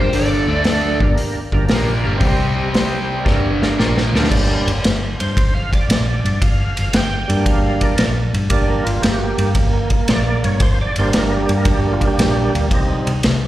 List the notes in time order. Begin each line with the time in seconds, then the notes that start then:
Already playing: G1 A#3 D4 G4 A#4 C5
0.00 G4
0.12 G1 G2 D3 G3 A4 D5, open hi-hat
0.47 D2 D3 A3 D4 A4 D5
0.64 snare, open hi-hat
1.00 G1 G2 D3 A#3 D4 G4 A#4, kick
1.18 open hi-hat
1.52 G1 G2 D3 A#3 D4 G4 A#4, kick
1.66 A#3 D4 G4 A#4, snare, open hi-hat
1.71 A#1 A#2 F3 A#3
2.03 G1 G2 D3 G3 A#3 D4 G4 A#4
2.16 C3 G3 C4 G4 C5
2.21 C2 G3 C4, kick, open hi-hat
2.55 G3 C4 G4 D#5
2.73 G3 C4 G4 C5, snare, open hi-hat
3.04 G3 C4 G4 C5
3.24 G1 G2 D3 G3 A#3 D4 G4 A#4, kick, snare
3.62 A#3 D4 G4 A#4, snare
3.78 A#1 A#2 F3 A#3 D4 G4 A#4, snare
3.97 snare
4.12 D2 D3 A3 A#3 D4 G4 A#4, snare
4.24 snare
4.30 G1 G3 A#3 D4, kick, crash
4.66 G1, ride
4.84 G1, snare, ride
5.20 G2 C5, ride
5.37 G1, kick, ride
5.54 F5
5.73 D5, kick, ride
5.89 A#1, snare, ride
6.24 G2, ride
6.42 G1 F5, kick, ride
6.77 G1, ride
6.93 G1 F#5 G5, snare, ride
7.28 G2 G3 A#3 D4, ride
7.46 G1 F5, kick, ride
7.81 A#4 D5, kick, ride
7.98 A#1, snare, ride
8.34 G2, ride
8.50 G1 G3 A#3 D4 D5, kick, ride
8.70 A#4
8.85 G1 F4, ride
9.02 G1 G4, snare, ride
9.18 F#4
9.23 G4
9.38 G2, ride
9.55 G1, kick, ride
9.90 kick, ride
10.08 A#1 D5, snare, ride
10.44 G2 C#5, ride
10.60 G1 C5, kick, ride
10.81 D5
10.96 G1 G3 A#3 D4 C5, ride
11.13 G1, snare, ride
11.18 A#4
11.37 G4
11.49 G2, ride
11.56 A#4
11.65 G1, kick, ride
11.74 G4
11.93 F4
12.01 kick, ride
12.07 D4 G4
12.18 A#1, snare, ride
12.55 D2, ride
12.71 C2 G3 C4 D#4, kick, ride
13.07 C2, ride
13.23 C2, snare, ride